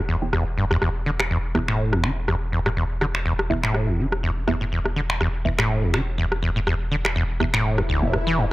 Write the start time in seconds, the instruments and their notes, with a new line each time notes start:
Already playing: sub bass E1
0.09 acid bass E2
0.22 synth stab B3 E4 G5
0.33 acid bass E2, cross-stick
0.57 acid bass G2
0.71 acid bass E2, cross-stick
0.82 sub bass E1, acid bass E2, cross-stick
1.06 acid bass D3
1.20 finger snap, cross-stick
1.31 acid bass E2
1.55 acid bass D2, synth stab B3 E4 E5, cross-stick
1.68 acid bass A2, finger snap
1.93 acid bass E2, cross-stick
2.04 acid bass D3, finger snap
2.28 acid bass E2, cross-stick
2.52 acid bass E2
2.66 acid bass A2, cross-stick
2.77 acid bass E2
3.01 acid bass D3, cross-stick
3.15 finger snap
3.26 acid bass E2
3.39 cross-stick
3.50 acid bass D2, synth stab B3 E4 E5
3.63 acid bass A2, finger snap
3.74 cross-stick
3.88 acid bass E2
3.99 acid bass D3
4.12 cross-stick
4.23 acid bass E2
4.47 acid bass E2, synth stab B3 E4 E5, cross-stick
4.61 acid bass A2
4.72 acid bass E2
4.85 cross-stick
4.96 acid bass D3
5.10 finger snap
5.21 acid bass E2, cross-stick
5.45 acid bass D2, synth stab B3 E4 E5
5.58 acid bass A2, finger snap, cross-stick
5.83 acid bass E2
5.94 acid bass D3, finger snap, cross-stick
6.18 acid bass E2
6.32 cross-stick
6.43 acid bass E2
6.56 acid bass A2
6.67 acid bass E2, cross-stick
6.91 acid bass D3
7.05 finger snap, cross-stick
7.16 acid bass E2
7.40 acid bass D2, synth stab B3 E4 E5, cross-stick
7.54 acid bass A2, finger snap
7.65 swell
7.78 acid bass E2, cross-stick
7.89 acid bass D2
8.02 acid bass E1, synth stab B3 E4 G5
8.13 acid bass E3, cross-stick
8.27 acid bass E3
8.38 acid bass G2